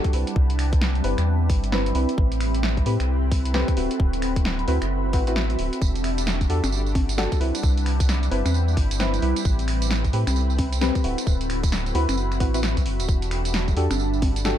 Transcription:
Already playing: G3 D4 F#4 G4 A4 F#5 A5
0.04 kick, closed hi-hat
0.13 C2 C4 E4 B4, open hi-hat
0.27 closed hi-hat
0.36 C2, kick
0.50 closed hi-hat
0.59 B5, finger snap, open hi-hat
0.73 kick, closed hi-hat
0.81 snare
0.95 E5, closed hi-hat
1.04 G1 C4 E4 B4, open hi-hat
1.18 E2, finger snap, closed hi-hat
1.50 G1, kick, open hi-hat
1.64 closed hi-hat
1.72 C4 E4 B4, snare
1.86 closed hi-hat
1.95 C2 C4 E4 B4, open hi-hat
2.09 closed hi-hat
2.18 A1 C4 G4 B4, kick
2.32 closed hi-hat
2.39 G5, finger snap, open hi-hat
2.55 closed hi-hat
2.60 A4, snare
2.77 kick, closed hi-hat
2.86 A2 C4 G4 B4, open hi-hat
3.00 C2, finger snap, closed hi-hat
3.31 kick, open hi-hat
3.45 closed hi-hat
3.54 C4 G4 B4, snare
3.68 kick, closed hi-hat
3.77 D1 C4 E4 F#4 B4, open hi-hat
3.91 closed hi-hat
4.00 D1, kick
4.10 F#4, closed hi-hat
4.20 E5, finger snap, open hi-hat
4.36 kick, closed hi-hat
4.45 snare
4.59 closed hi-hat
4.68 D2 C4 E4 F#4 B4, open hi-hat
4.82 F#1, finger snap, closed hi-hat
5.13 A1 C4 E4 F#4 B4, kick, open hi-hat
5.27 C4 E4 F#4 B4, closed hi-hat
5.36 snare
5.50 closed hi-hat
5.59 D1, open hi-hat
5.73 closed hi-hat
5.81 E1 D4 G4 A4, kick, tambourine
5.95 closed hi-hat, tambourine
6.04 finger snap, open hi-hat
6.18 closed hi-hat, tambourine
6.25 G3, snare, tambourine
6.41 kick, closed hi-hat, tambourine
6.50 E2 D4 F#4 G4 A4, open hi-hat
6.54 F#5 A5
6.64 G1, finger snap, closed hi-hat, tambourine, high conga
6.72 tambourine
6.86 tambourine
6.95 kick, open hi-hat, high conga
7.09 closed hi-hat, tambourine
7.18 D4 F#4 G4 A4, snare, tambourine
7.32 kick, closed hi-hat, tambourine
7.40 C2 C4 E4 G4 B4, open hi-hat
7.55 closed hi-hat, tambourine
7.63 C2, kick, tambourine
7.68 E5
7.77 closed hi-hat, tambourine
7.86 finger snap, open hi-hat
8.00 kick, closed hi-hat, tambourine
8.09 B5, snare, tambourine
8.23 closed hi-hat, tambourine
8.31 G1 C4 E4 B4, open hi-hat
8.45 E2, finger snap, closed hi-hat, tambourine, high conga
8.54 tambourine
8.68 tambourine
8.77 G1, kick, open hi-hat
8.91 closed hi-hat, tambourine
8.99 C4 E4 B4, snare, tambourine
9.14 closed hi-hat, tambourine
9.22 C2 C4 E4 B4, open hi-hat
9.36 closed hi-hat, tambourine
9.45 A1 C4, kick, tambourine
9.59 closed hi-hat, tambourine
9.68 finger snap, open hi-hat
9.76 G5
9.82 closed hi-hat, tambourine
9.86 A4
9.91 snare, tambourine
10.04 kick, closed hi-hat, tambourine
10.13 A2 C4 G4 B4, open hi-hat
10.27 C2, finger snap, closed hi-hat, tambourine, high conga
10.36 tambourine
10.50 tambourine
10.58 kick, open hi-hat, high conga
10.73 closed hi-hat, tambourine
10.81 C4 G4 B4, snare, tambourine
10.95 kick, closed hi-hat, tambourine
11.04 D1 C4 E4 F#4 B4, open hi-hat
11.18 F#4, closed hi-hat, tambourine
11.27 D1, kick, tambourine
11.41 closed hi-hat, tambourine
11.50 finger snap, open hi-hat
11.63 kick, closed hi-hat, tambourine
11.72 snare, tambourine
11.78 E5
11.86 closed hi-hat, tambourine
11.95 D2 C4 E4 F#4 B4, open hi-hat
12.09 F#1, finger snap, closed hi-hat, tambourine, high conga
12.18 tambourine
12.32 finger snap, closed hi-hat, tambourine
12.40 A1 C4 E4 F#4 B4, kick, open hi-hat
12.54 C4 E4 F#4 B4, closed hi-hat, tambourine
12.63 snare, tambourine
12.77 C2, kick, closed hi-hat, tambourine
12.86 F#1, open hi-hat
13.00 D1, closed hi-hat, tambourine
13.08 E1 D4 G4 A4, kick, tambourine
13.22 closed hi-hat, tambourine
13.31 G3, finger snap, open hi-hat
13.45 closed hi-hat, tambourine
13.54 snare, tambourine
13.68 kick, closed hi-hat, tambourine
13.77 E2 D4 F#4 G4 A4, open hi-hat
13.81 F#5 A5
13.91 G1, finger snap, closed hi-hat, tambourine, high conga
14.00 tambourine
14.14 tambourine
14.22 kick, open hi-hat, high conga
14.36 closed hi-hat, tambourine
14.45 D4 F#4 G4 A4, snare, tambourine

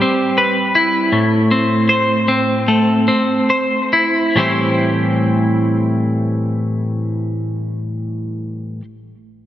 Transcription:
Already playing: G3 E4 B4
0.02 C4
0.38 B4
0.75 E4
1.12 A2
1.51 C4
1.89 C5
2.28 C4
2.68 A3
3.08 C4
3.50 C5
3.93 E4
4.36 A2 E3 G3 C4 E4
4.40 C5

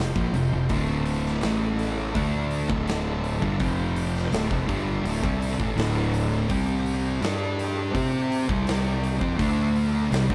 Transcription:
Already playing: F1 F4 C5 G5
0.00 snare
0.15 A#1 A#2 F3, kick
0.34 F1 F2 C3, open hi-hat
0.52 F1 F2 C3
0.69 D1 D2 A2 D3 D4 A4 E5, kick, open hi-hat
1.06 open hi-hat
1.26 snare
1.41 A1 A2 E3 A3 E4, snare, open hi-hat
1.79 snare, open hi-hat
2.13 D2 D3 A3 D4 E5, kick, open hi-hat
2.51 open hi-hat
2.69 D1 D2 A2 D3, kick
2.88 snare, open hi-hat
3.24 open hi-hat
3.42 G1 G2 D3, kick
3.60 F1 F2 C3 F3 F4 C5 G5, kick, open hi-hat
3.96 open hi-hat
4.16 snare
4.32 D1 D2 A2 D4 A4 E5, snare, open hi-hat
4.50 F1 F2 C3, kick
4.68 G1 G2 D3 G3, kick, open hi-hat
5.04 D1 D2 A2, open hi-hat
5.23 C2 C3 G3 C4, kick
5.42 open hi-hat
5.59 A1 A2 E3, kick
5.76 D1 D2 A2 D3, open hi-hat
5.80 snare
6.14 open hi-hat
6.49 C2 C3 G3 C4 G4 D5, kick, open hi-hat
6.86 open hi-hat
7.21 G2 G3 D4 G4, snare, open hi-hat
7.26 G3 A4
7.59 snare, open hi-hat
7.94 C3 C4 G4 C5 D5, kick, open hi-hat
8.32 open hi-hat
8.48 C2 C3 G3 C4, kick
8.67 snare, open hi-hat
9.03 open hi-hat
9.20 F2 F3 C4, kick
9.38 D2 D3 A3 D4 A4 E5, kick, open hi-hat
9.76 open hi-hat
10.11 C2 C3 G3 C4 G4 D5, snare, open hi-hat
10.28 D2 D3 A3, kick

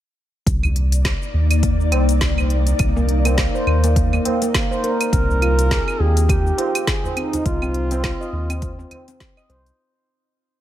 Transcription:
0.45 C2 A#3 D#4 D5, kick, closed hi-hat, shaker
0.63 tabla ge, claves, shaker
0.76 closed hi-hat
0.92 closed hi-hat, shaker
1.05 kick, snare, closed hi-hat, claves, shaker
1.22 shaker
1.34 D#2
1.51 closed hi-hat, claves, shaker
1.63 kick, closed hi-hat, shaker
1.81 shaker
1.92 C2, closed hi-hat, tabla na, tabla tin, claves
2.09 closed hi-hat, shaker
2.21 kick, snare, closed hi-hat, shaker
2.37 tabla na, tabla ge, claves, shaker
2.50 closed hi-hat
2.67 closed hi-hat, tabla ge, shaker
2.79 C2, kick, closed hi-hat, claves, shaker
2.96 A#3, tabla ge, shaker
3.09 closed hi-hat
3.25 A#3, closed hi-hat, tabla na, claves, shaker
3.38 kick, snare, closed hi-hat, shaker
3.55 C5, shaker
3.66 D#2, claves
3.84 A#3, closed hi-hat, shaker
3.96 kick, closed hi-hat, shaker
4.13 A#3, claves, shaker
4.25 closed hi-hat, tabla na, tabla tin, tabla ge
4.42 A#3, closed hi-hat, shaker
4.54 kick, snare, closed hi-hat, tabla tin, claves, shaker
4.71 C5, shaker
4.84 A#4, closed hi-hat, tabla tin
5.00 closed hi-hat, tabla tin, claves, shaker
5.13 C2 C4 A#4, kick, closed hi-hat, shaker
5.29 tabla ge, shaker
5.42 F4, closed hi-hat, claves
5.59 closed hi-hat, shaker
5.71 G#4, kick, snare, closed hi-hat, shaker
5.88 claves, shaker
6.00 D#2 G4 G#4
6.17 closed hi-hat, shaker
6.23 G#4
6.29 G4, kick, closed hi-hat, claves, shaker
6.47 shaker
6.58 F4, closed hi-hat, tabla na, tabla tin
6.75 closed hi-hat, claves, shaker
6.87 G#4, kick, snare, closed hi-hat, shaker
7.04 tabla na, tabla ge, shaker
7.16 C4 D#4, closed hi-hat, claves
7.33 D#4, closed hi-hat, tabla ge, shaker
7.46 C2 F4, kick, closed hi-hat, shaker
7.62 C4, tabla ge, claves, shaker
7.74 closed hi-hat
7.91 C4, closed hi-hat, tabla na, shaker
8.04 kick, snare, closed hi-hat, claves, shaker
8.21 D#5, shaker
8.32 D#2
8.50 C4, closed hi-hat, claves, shaker
8.62 kick, closed hi-hat, shaker
8.79 C4, shaker
8.91 closed hi-hat, tabla na, tabla tin, tabla ge, claves
9.08 C4, closed hi-hat, shaker
9.20 kick, snare, closed hi-hat, shaker
9.37 D#5, claves, shaker
9.49 C2 C5, closed hi-hat, tabla tin
9.66 closed hi-hat, shaker

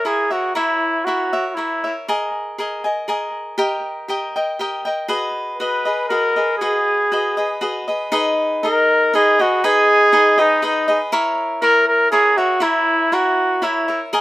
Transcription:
0.05 E4 G#4 A#4 C#5 E5
0.30 F#4 A#4 C#5 E5
0.55 E4 A#4 C#5 E5
1.04 E4 F#4 A#4 C#5 E5
1.33 A#4 C#5 E5
1.48 F#4
1.54 E4 A#4 C#5 E5
1.84 A#4 C#5 E5
2.08 G#4 A#4 D#5 G#5
2.58 G#4 A#4 D#5 G#5
2.84 A#4 D#5 G#5
3.08 G#4 A#4 D#5 G#5
3.58 G4 A#4 D#5 G5
4.08 G4 A#4 D#5 G5
4.36 A#4 D#5 G5
4.59 G4 A#4 D#5 G5
4.85 A#4 D#5 G5
5.08 F#4 G#4 B4 D#5
5.58 F#4 G#4 B4 D#5
5.85 G#4 B4 D#5
6.09 F#4 G#4 A#4 B4 D#5
6.36 G#4 B4 D#5
6.58 F#4 G#4
6.62 G#4 B4 D#5
7.12 F#4 G#4 B4 D#5
7.37 G#4 B4 D#5
7.61 F#4 G#4 B4 D#5
7.88 G#4 B4 D#5
8.12 D#4 G#4 B4 D#5
8.63 D#4 G#4 A#4 D#5
9.14 D#4 G#4 B4 D#5
9.39 F#4 G#4 B4 D#5
9.64 D#4 G#4 B4 D#5
10.12 D#4 G#4 B4 D#5
10.38 D#4 G#4 B4 D#5
10.62 D#4 G#4 B4 D#5
10.88 G#4 B4 D#5
11.12 E4 A#4 C#5 E5
11.62 E4 A#4 C#5 E5
11.88 A#4
12.11 E4 G#4 A#4 C#5 E5
12.37 F#4 A#4 C#5 E5
12.60 E4 A#4 C#5 E5
13.12 E4 F#4 A#4 C#5 E5
13.62 E4 A#4 C#5 E5
13.88 A#4 C#5 E5
14.13 G#4 A#4 D#5 G#5

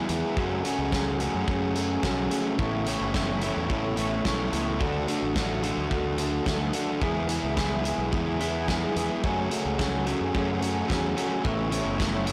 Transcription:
Already playing: E4
0.08 E2 E3 G#3 B3 E4 G#4, closed hi-hat
0.36 F#2 F#3 A3 C#4 F#4 G#4, kick
0.63 F#3 A3 C#4 F#4 G#4, closed hi-hat
0.79 C#2
0.92 F#3 A3 C#4 F#4 G#4, kick, snare
1.20 F#3 A3 C#4 F#4 G#4, closed hi-hat
1.34 F#2
1.47 F#2 F#3 A3 C#4 F#4 G#4, kick
1.75 F#3 A3 C#4 F#4 G#4, closed hi-hat
2.03 B1 F#3 A3 C#4 F#4 G#4, kick, snare
2.30 F#3 A3 C#4 F#4 G#4, closed hi-hat
2.58 A1 A2 E3 A3 B3 C#4 E4 A4 C#5, kick
2.86 A2 E3 A3 B3 C#4 E4 A4 C#5, closed hi-hat
3.01 F#1
3.14 A2 E3 A3 B3 C#4 E4 A4 C#5, kick, snare
3.41 A2 E3 A3 B3 C#4 E4 A4 C#5, closed hi-hat
3.57 E2
3.69 A1 A2 E3 A3 B3 C#4 E4 A4 C#5, kick
3.96 A1 A2 E3 A3 B3 C#4 E4 A4 C#5, closed hi-hat
4.24 B1 A2 E3 A3 B3 C#4 E4 A4 C#5, kick, snare
4.52 C#2 A2 E3 A3 B3 C#4 E4 A4 C#5, closed hi-hat
4.80 D2 D3 F#3 A3 D4 F#4 A4, kick
5.08 D3 F#3 A3 D4 F#4 A4, closed hi-hat
5.22 A1
5.36 D3 F#3 A3 D4 F#4 A4, kick, snare
5.63 D3 F#3 A3 D4 F#4 A4, closed hi-hat
5.78 D2
5.91 D2 D3 F#3 A3 D4 F#4 A4, kick
6.18 D3 F#3 A3 D4 F#4 A4, closed hi-hat
6.46 D2 D3 F#3 A3 D4 F#4 A4, kick, snare
6.73 D3 F#3 A3 D4 F#4 A4, closed hi-hat
7.01 E2 E3 G#3 B3 E4 G#4, kick
7.29 E3 G#3 B3 E4 G#4, closed hi-hat
7.44 C#2
7.57 E3 G#3 B3 E4 G#4, kick, snare
7.84 E3 G#3 B3 E4 G#4, closed hi-hat
7.98 B1
8.12 E2 E3 G#3 B3 E4 G#4, kick
8.40 E3 G#3 B3 E4 G#4, closed hi-hat
8.68 E3 G#3 B3 E4 G#4, kick, snare
8.95 E2 E3 G#3 B3 E4 G#4, closed hi-hat
9.23 F#2 F#3 A3 C#4 F#4 G#4, kick
9.50 F#3 A3 C#4 F#4 G#4, closed hi-hat
9.65 C#2
9.77 F#3 A3 C#4 F#4 G#4, kick, snare
10.05 F#3 A3 C#4 F#4 G#4, closed hi-hat
10.21 F#2
10.34 F#2 F#3 A3 C#4 F#4 G#4, kick
10.62 F#3 A3 C#4 F#4 G#4, closed hi-hat
10.89 E2 F#3 A3 C#4 F#4 G#4, kick, snare
11.17 F#3 A3 C#4 F#4 G#4, closed hi-hat
11.43 A1 A2 E3 A3 B3 C#4 E4 A4 C#5, kick
11.71 A2 E3 A3 B3 C#4 E4 A4 C#5, closed hi-hat
11.85 F#1
11.97 A2 E3 A3 B3 C#4 E4 A4 C#5, kick, snare
12.25 A2 E3 A3 B3 C#4 E4 A4 C#5, closed hi-hat

